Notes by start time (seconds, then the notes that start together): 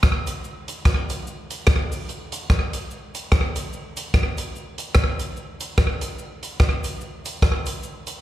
0.03 kick, cross-stick, cabasa
0.27 closed hi-hat, cabasa
0.44 cabasa
0.68 closed hi-hat, cabasa
0.85 kick, cross-stick, cabasa
1.09 closed hi-hat, cabasa
1.27 cabasa
1.50 closed hi-hat, cabasa
1.67 kick, cross-stick, cabasa
1.92 open hi-hat, cabasa
2.08 hi-hat pedal, cabasa
2.32 closed hi-hat, cabasa
2.50 kick, cross-stick, cabasa
2.73 closed hi-hat, cabasa
2.91 cabasa
3.15 closed hi-hat, cabasa
3.32 kick, cross-stick, cabasa
3.56 closed hi-hat, cabasa
3.73 cabasa
3.97 closed hi-hat, cabasa
4.14 kick, cross-stick, cabasa
4.38 closed hi-hat, cabasa
4.56 cabasa
4.78 closed hi-hat, cabasa
4.95 kick, cross-stick, cabasa
5.19 closed hi-hat, cabasa
5.37 cabasa
5.60 closed hi-hat, cabasa
5.78 kick, cross-stick, cabasa
6.01 closed hi-hat, cabasa
6.19 cabasa
6.43 closed hi-hat, cabasa
6.60 kick, cross-stick, cabasa
6.84 closed hi-hat, cabasa
7.01 cabasa
7.25 closed hi-hat, cabasa
7.42 kick, cross-stick, cabasa
7.66 closed hi-hat, cabasa
7.83 cabasa
8.07 closed hi-hat, cabasa